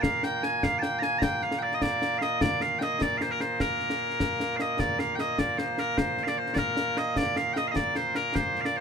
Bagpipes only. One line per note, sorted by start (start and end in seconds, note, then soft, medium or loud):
0.00 8.80 A#2 medium
0.00 8.80 A#3 medium
0.00 0.24 F5 loud
0.24 0.43 G5 loud
0.43 0.63 G#5 loud
0.63 0.79 F5 loud
0.79 0.99 G5 loud
0.79 0.82 A5 loud
0.99 1.03 A#5 loud
1.03 1.19 G#5 loud
1.19 1.23 A#5 loud
1.23 1.43 G5 loud
1.43 1.59 F5 loud
1.59 1.74 D5 medium
1.59 1.63 G5 medium
1.74 1.82 D#5 medium
1.82 2.18 D5 loud
2.18 2.42 D#5 medium
2.18 2.22 F5 medium
2.42 2.62 D5 loud
2.62 2.79 F5 medium
2.79 3.02 D#5 medium
2.79 2.83 G5 medium
3.02 3.18 D5 loud
3.18 3.22 F5 medium
3.22 3.31 C5 medium
3.31 3.41 A#4 medium
3.41 3.61 C5 medium
3.61 4.57 A#4 medium
4.57 4.61 F5 medium
4.61 4.80 D#5 medium
4.80 4.99 D5 medium
4.99 5.15 F5 loud
5.15 5.20 G5 medium
5.20 5.39 D#5 medium
5.39 5.58 D5 medium
5.58 5.79 C5 medium
5.79 5.98 A#4 medium
5.98 6.24 C5 loud
6.24 6.28 F5 medium
6.28 6.38 D5 medium
6.38 6.54 C5 medium
6.54 6.58 D5 medium
6.58 6.98 A#4 medium
6.98 7.17 D#5 loud
7.17 7.37 D5 loud
7.37 7.53 F5 loud
7.53 7.67 D#5 loud
7.53 7.57 G5 loud
7.67 7.76 D#5 medium
7.67 7.71 F5 medium
7.76 7.96 D5 loud
7.96 8.16 C5 medium
8.16 8.35 A#4 medium
8.35 8.61 C5 loud
8.61 8.65 F5 medium
8.65 8.77 D5 medium
8.77 8.80 C5 loud